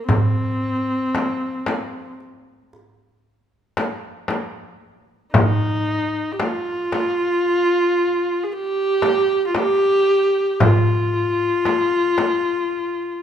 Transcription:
0, 0, Header, 1, 4, 480
1, 0, Start_track
1, 0, Tempo, 1052632
1, 36, Time_signature, 10, 3, 24, 8
1, 6031, End_track
2, 0, Start_track
2, 0, Title_t, "Viola"
2, 0, Program_c, 0, 41
2, 40, Note_on_c, 0, 60, 72
2, 981, Note_off_c, 0, 60, 0
2, 2438, Note_on_c, 0, 63, 74
2, 2882, Note_on_c, 0, 67, 58
2, 2888, Note_off_c, 0, 63, 0
2, 2923, Note_on_c, 0, 65, 88
2, 2930, Note_off_c, 0, 67, 0
2, 3846, Note_on_c, 0, 68, 72
2, 3853, Note_off_c, 0, 65, 0
2, 3889, Note_on_c, 0, 67, 95
2, 3896, Note_off_c, 0, 68, 0
2, 4317, Note_off_c, 0, 67, 0
2, 4319, Note_on_c, 0, 65, 66
2, 4363, Note_on_c, 0, 67, 99
2, 4370, Note_off_c, 0, 65, 0
2, 4839, Note_on_c, 0, 65, 85
2, 4846, Note_off_c, 0, 67, 0
2, 6031, Note_off_c, 0, 65, 0
2, 6031, End_track
3, 0, Start_track
3, 0, Title_t, "Darbuka"
3, 44, Note_on_c, 9, 64, 78
3, 90, Note_off_c, 9, 64, 0
3, 528, Note_on_c, 9, 63, 62
3, 573, Note_off_c, 9, 63, 0
3, 767, Note_on_c, 9, 63, 63
3, 813, Note_off_c, 9, 63, 0
3, 1005, Note_on_c, 9, 62, 23
3, 1050, Note_off_c, 9, 62, 0
3, 1246, Note_on_c, 9, 62, 26
3, 1291, Note_off_c, 9, 62, 0
3, 1724, Note_on_c, 9, 63, 61
3, 1769, Note_off_c, 9, 63, 0
3, 1963, Note_on_c, 9, 63, 58
3, 2009, Note_off_c, 9, 63, 0
3, 2438, Note_on_c, 9, 64, 78
3, 2484, Note_off_c, 9, 64, 0
3, 2918, Note_on_c, 9, 63, 61
3, 2964, Note_off_c, 9, 63, 0
3, 3159, Note_on_c, 9, 63, 63
3, 3205, Note_off_c, 9, 63, 0
3, 3399, Note_on_c, 9, 62, 25
3, 3445, Note_off_c, 9, 62, 0
3, 3642, Note_on_c, 9, 62, 28
3, 3687, Note_off_c, 9, 62, 0
3, 4118, Note_on_c, 9, 63, 65
3, 4164, Note_off_c, 9, 63, 0
3, 4359, Note_on_c, 9, 63, 66
3, 4405, Note_off_c, 9, 63, 0
3, 4838, Note_on_c, 9, 64, 85
3, 4884, Note_off_c, 9, 64, 0
3, 5078, Note_on_c, 9, 62, 24
3, 5123, Note_off_c, 9, 62, 0
3, 5318, Note_on_c, 9, 63, 65
3, 5364, Note_off_c, 9, 63, 0
3, 5556, Note_on_c, 9, 63, 62
3, 5602, Note_off_c, 9, 63, 0
3, 5795, Note_on_c, 9, 62, 23
3, 5841, Note_off_c, 9, 62, 0
3, 6031, End_track
4, 0, Start_track
4, 0, Title_t, "Frame drum"
4, 39, Note_on_c, 9, 64, 73
4, 85, Note_off_c, 9, 64, 0
4, 523, Note_on_c, 9, 64, 68
4, 568, Note_off_c, 9, 64, 0
4, 759, Note_on_c, 9, 64, 67
4, 805, Note_off_c, 9, 64, 0
4, 1719, Note_on_c, 9, 64, 66
4, 1765, Note_off_c, 9, 64, 0
4, 1952, Note_on_c, 9, 64, 67
4, 1998, Note_off_c, 9, 64, 0
4, 2435, Note_on_c, 9, 64, 87
4, 2481, Note_off_c, 9, 64, 0
4, 2916, Note_on_c, 9, 64, 69
4, 2962, Note_off_c, 9, 64, 0
4, 3157, Note_on_c, 9, 64, 64
4, 3203, Note_off_c, 9, 64, 0
4, 4114, Note_on_c, 9, 64, 66
4, 4160, Note_off_c, 9, 64, 0
4, 4353, Note_on_c, 9, 64, 64
4, 4399, Note_off_c, 9, 64, 0
4, 4835, Note_on_c, 9, 64, 86
4, 4881, Note_off_c, 9, 64, 0
4, 5314, Note_on_c, 9, 64, 62
4, 5360, Note_off_c, 9, 64, 0
4, 5553, Note_on_c, 9, 64, 62
4, 5599, Note_off_c, 9, 64, 0
4, 6031, End_track
0, 0, End_of_file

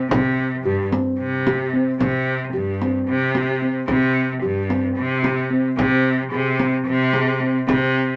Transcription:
0, 0, Header, 1, 4, 480
1, 0, Start_track
1, 0, Tempo, 540541
1, 91, Time_signature, 7, 3, 24, 8
1, 7248, End_track
2, 0, Start_track
2, 0, Title_t, "Felt piano"
2, 0, Program_c, 0, 0
2, 80, Note_on_c, 0, 60, 72
2, 383, Note_off_c, 0, 60, 0
2, 579, Note_on_c, 0, 67, 75
2, 726, Note_off_c, 0, 67, 0
2, 812, Note_on_c, 0, 60, 64
2, 1111, Note_off_c, 0, 60, 0
2, 1300, Note_on_c, 0, 67, 72
2, 1447, Note_off_c, 0, 67, 0
2, 1537, Note_on_c, 0, 60, 69
2, 1685, Note_off_c, 0, 60, 0
2, 1773, Note_on_c, 0, 60, 63
2, 2072, Note_off_c, 0, 60, 0
2, 2248, Note_on_c, 0, 67, 64
2, 2398, Note_off_c, 0, 67, 0
2, 2498, Note_on_c, 0, 60, 60
2, 2795, Note_off_c, 0, 60, 0
2, 2979, Note_on_c, 0, 67, 68
2, 3126, Note_off_c, 0, 67, 0
2, 3210, Note_on_c, 0, 60, 65
2, 3360, Note_off_c, 0, 60, 0
2, 3453, Note_on_c, 0, 60, 71
2, 3752, Note_off_c, 0, 60, 0
2, 3924, Note_on_c, 0, 67, 71
2, 4075, Note_off_c, 0, 67, 0
2, 4165, Note_on_c, 0, 60, 58
2, 4466, Note_off_c, 0, 60, 0
2, 4641, Note_on_c, 0, 67, 58
2, 4794, Note_off_c, 0, 67, 0
2, 4885, Note_on_c, 0, 60, 65
2, 5036, Note_off_c, 0, 60, 0
2, 5125, Note_on_c, 0, 60, 73
2, 5427, Note_off_c, 0, 60, 0
2, 5608, Note_on_c, 0, 68, 69
2, 5759, Note_off_c, 0, 68, 0
2, 5853, Note_on_c, 0, 60, 62
2, 6152, Note_off_c, 0, 60, 0
2, 6333, Note_on_c, 0, 68, 71
2, 6482, Note_off_c, 0, 68, 0
2, 6572, Note_on_c, 0, 60, 66
2, 6721, Note_off_c, 0, 60, 0
2, 6811, Note_on_c, 0, 60, 66
2, 7110, Note_off_c, 0, 60, 0
2, 7248, End_track
3, 0, Start_track
3, 0, Title_t, "Cello"
3, 0, Program_c, 1, 42
3, 84, Note_on_c, 1, 48, 81
3, 485, Note_off_c, 1, 48, 0
3, 568, Note_on_c, 1, 43, 77
3, 768, Note_off_c, 1, 43, 0
3, 1058, Note_on_c, 1, 48, 75
3, 1652, Note_off_c, 1, 48, 0
3, 1774, Note_on_c, 1, 48, 81
3, 2171, Note_off_c, 1, 48, 0
3, 2250, Note_on_c, 1, 43, 74
3, 2648, Note_off_c, 1, 43, 0
3, 2732, Note_on_c, 1, 48, 78
3, 3329, Note_off_c, 1, 48, 0
3, 3443, Note_on_c, 1, 48, 86
3, 3844, Note_off_c, 1, 48, 0
3, 3932, Note_on_c, 1, 43, 76
3, 4329, Note_off_c, 1, 43, 0
3, 4403, Note_on_c, 1, 48, 80
3, 5004, Note_off_c, 1, 48, 0
3, 5124, Note_on_c, 1, 48, 86
3, 5525, Note_off_c, 1, 48, 0
3, 5610, Note_on_c, 1, 48, 77
3, 6008, Note_off_c, 1, 48, 0
3, 6093, Note_on_c, 1, 48, 91
3, 6690, Note_off_c, 1, 48, 0
3, 6814, Note_on_c, 1, 48, 96
3, 7211, Note_off_c, 1, 48, 0
3, 7248, End_track
4, 0, Start_track
4, 0, Title_t, "Frame drum"
4, 100, Note_on_c, 9, 64, 67
4, 188, Note_off_c, 9, 64, 0
4, 347, Note_on_c, 9, 64, 22
4, 436, Note_off_c, 9, 64, 0
4, 821, Note_on_c, 9, 64, 51
4, 910, Note_off_c, 9, 64, 0
4, 1067, Note_on_c, 9, 64, 19
4, 1156, Note_off_c, 9, 64, 0
4, 1302, Note_on_c, 9, 64, 53
4, 1391, Note_off_c, 9, 64, 0
4, 1780, Note_on_c, 9, 64, 52
4, 1869, Note_off_c, 9, 64, 0
4, 2501, Note_on_c, 9, 64, 41
4, 2589, Note_off_c, 9, 64, 0
4, 2743, Note_on_c, 9, 64, 14
4, 2832, Note_off_c, 9, 64, 0
4, 2973, Note_on_c, 9, 64, 45
4, 3062, Note_off_c, 9, 64, 0
4, 3445, Note_on_c, 9, 64, 56
4, 3534, Note_off_c, 9, 64, 0
4, 4175, Note_on_c, 9, 64, 43
4, 4264, Note_off_c, 9, 64, 0
4, 4413, Note_on_c, 9, 64, 15
4, 4502, Note_off_c, 9, 64, 0
4, 4654, Note_on_c, 9, 64, 49
4, 4743, Note_off_c, 9, 64, 0
4, 5138, Note_on_c, 9, 64, 61
4, 5227, Note_off_c, 9, 64, 0
4, 5856, Note_on_c, 9, 64, 46
4, 5945, Note_off_c, 9, 64, 0
4, 6108, Note_on_c, 9, 64, 15
4, 6197, Note_off_c, 9, 64, 0
4, 6336, Note_on_c, 9, 64, 46
4, 6425, Note_off_c, 9, 64, 0
4, 6825, Note_on_c, 9, 64, 60
4, 6913, Note_off_c, 9, 64, 0
4, 7248, End_track
0, 0, End_of_file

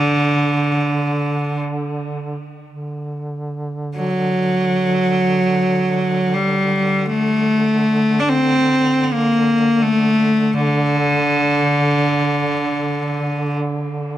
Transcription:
0, 0, Header, 1, 3, 480
1, 0, Start_track
1, 0, Key_signature, 2, "major"
1, 0, Tempo, 500000
1, 13610, End_track
2, 0, Start_track
2, 0, Title_t, "Cello"
2, 0, Program_c, 0, 42
2, 0, Note_on_c, 0, 50, 69
2, 1532, Note_off_c, 0, 50, 0
2, 3811, Note_on_c, 0, 54, 61
2, 6085, Note_on_c, 0, 55, 58
2, 6100, Note_off_c, 0, 54, 0
2, 6780, Note_on_c, 0, 57, 72
2, 6795, Note_off_c, 0, 55, 0
2, 7865, Note_on_c, 0, 62, 55
2, 7880, Note_off_c, 0, 57, 0
2, 7959, Note_on_c, 0, 60, 70
2, 7973, Note_off_c, 0, 62, 0
2, 8667, Note_off_c, 0, 60, 0
2, 8667, Note_on_c, 0, 60, 44
2, 8762, Note_on_c, 0, 58, 62
2, 8777, Note_off_c, 0, 60, 0
2, 9426, Note_on_c, 0, 57, 67
2, 9441, Note_off_c, 0, 58, 0
2, 10119, Note_on_c, 0, 50, 70
2, 10134, Note_off_c, 0, 57, 0
2, 13019, Note_off_c, 0, 50, 0
2, 13610, End_track
3, 0, Start_track
3, 0, Title_t, "Duduk"
3, 0, Program_c, 1, 69
3, 0, Note_on_c, 1, 50, 33
3, 2407, Note_off_c, 1, 50, 0
3, 2570, Note_on_c, 1, 50, 33
3, 13610, Note_off_c, 1, 50, 0
3, 13610, End_track
0, 0, End_of_file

